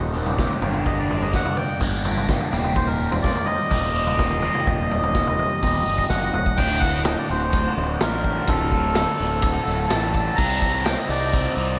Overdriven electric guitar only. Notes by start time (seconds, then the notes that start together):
Already playing: D#2 A#2 D#3 G3 C4 G4
0.14 D#2 A#2 D#3 G3 C4 G4
0.37 D#2 A#2 D#3 G3 C4 G4
0.61 G2 D3 G3 A#3 D4 G4
1.80 G2 D3 G3 A#3 D4 G4
2.04 G2 D3 G3 A#3 D4 G4
2.52 D#2 A#2 D#3 G3 C4 G4
3.71 D#2 A#2 D#3 G3 C4 G4
3.95 D#2 A#2 D#3 G3 C4 G4
4.42 D#2 A#2 D#3 G3 C4 G4
5.62 D#2 A#2 D#3 G3 C4 G4
5.86 D#2 A#2 D#3 G3 C4 G4
6.58 D2
6.82 A2
7.05 D2
7.29 A2
7.53 D2
7.77 A2
8.01 G3
8.24 D3
8.48 D2
8.73 A2
8.96 D2
9.20 A2
9.43 D2
9.67 A2
9.91 G3
10.15 D3
10.39 C3
10.63 G3
10.87 C4
11.10 D#4
11.34 C4
11.58 D#4